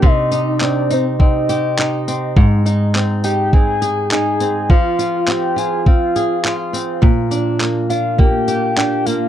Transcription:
<<
  \new Staff \with { instrumentName = "Soft synth lead" } { \time 4/4 \key bes \mixolydian \tempo 4 = 103 ees''4 d''8 c''8 ees''4. r8 | r4. g''8 aes''4 aes''4 | f''4 g''8 aes''8 f''4. r8 | r4. f''8 g''4 g''8 f''8 | }
  \new Staff \with { instrumentName = "Nylon-string guitar" } { \time 4/4 \key bes \mixolydian c8 ees'8 c'8 ees'8 c'8 g'8 ees'8 c'8 | aes,8 ees'8 c'8 ees'8 c'8 aes'8 ees'8 c'8 | f8 f'8 c'8 f'8 c'8 aes'8 f'8 c'8 | bes,8 d'8 bes8 d'8 bes8 g'8 d'8 bes8 | }
  \new DrumStaff \with { instrumentName = "Drums" } \drummode { \time 4/4 bd8 tamb8 hc8 tamb8 bd8 tamb8 hc8 tamb8 | bd8 tamb8 hc8 tamb8 bd8 tamb8 hc8 tamb8 | bd8 tamb8 hc8 tamb8 bd8 tamb8 hc8 tamb8 | bd8 tamb8 hc8 tamb8 bd8 tamb8 hc8 tamb8 | }
>>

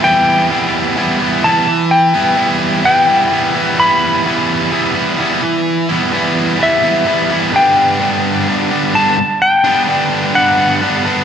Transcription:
<<
  \new Staff \with { instrumentName = "Electric slide guitar" } { \time 4/4 \key e \minor \tempo 4 = 64 g''4. a''8 g''4 g''4 | b''2 r4 e''4 | g''4. a''8 g''4 fis''4 | }
  \new Staff \with { instrumentName = "Distorted electric guitar" } { \time 4/4 \key e \minor <e g b e'>8 <e g b e'>8 <e g b e'>16 <g b e'>16 <e g b e'>8. <g b e'>16 <e g b e'>8 <e g b e'>16 <g b e'>16 <e g b e'>16 <g b e'>16 | <e g b e'>8 <e g b e'>8 <e g b e'>16 <g b e'>16 <e g b e'>8. <g b e'>16 <e g b e'>8 <e g b e'>16 <g b e'>16 <e g b e'>16 <g b e'>16 | <g, d g b d'>8 <d g b d'>8 <g, d g b d'>16 <g b d'>16 <d g b d'>8. <g b d'>16 <d g b d'>8 <g, d g b d'>16 <g b d'>16 <d g b d'>16 <g b d'>16 | }
>>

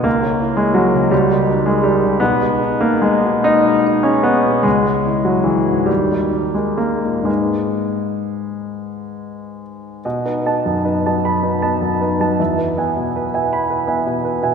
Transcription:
\new Staff \with { instrumentName = "Grand piano" } { \time 6/8 \key gis \minor \tempo 4. = 51 << { ais8. gis16 fis8 g8. gis16 g8 | b8. ais16 gis8 dis'8. cis'16 b8 | gis8. fis16 e8 g8. gis16 ais8 | gis2~ gis8 r8 |
dis''16 b'16 <dis'' a''>16 fis,16 b'16 <dis'' a''>16 b''16 b'16 <dis'' a''>16 fis,16 b'16 <dis'' a''>16 | e''16 b'16 <e'' gis''>16 b,16 b'16 <e'' gis''>16 b''16 b'16 <e'' gis''>16 b,16 b'16 <e'' gis''>16 | } \\ { cis,16 <ais' cis''>16 e'16 <ais' cis''>16 <ais' cis''>16 cis16 cis,16 <ais' dis''>16 dis'16 <ais' dis''>16 <ais' dis''>16 cis16 | b,,16 <gis' dis''>16 dis'16 <gis' dis''>16 <gis' dis''>16 b,8 <gis' dis''>16 dis'16 <gis' dis''>16 <gis' dis''>16 b,16 | cis,16 <gis' cis''>16 e'16 <gis' cis''>16 <gis' cis''>16 gis,16 dis,16 <dis' ais'>16 dis'16 <dis' ais'>16 <dis' ais'>16 ais,16 | <gis, dis' b'>2. |
b,16 dis'16 b16 dis'16 dis'16 fis8 dis'16 b16 dis'16 dis'16 fis16 | e,16 r16 b8 r16 b,8. b8 r16 b,16 | } >> }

